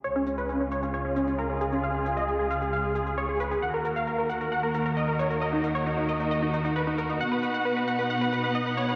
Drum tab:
SH |x-xxx-xxx-xxx-xx|x-xxx-xxx-xxx-xx|x-xxx-xxx-xxx-xx|x-xxx-xxx-xxx-xx|

SH |x-xxx-xxx-xxx-xx|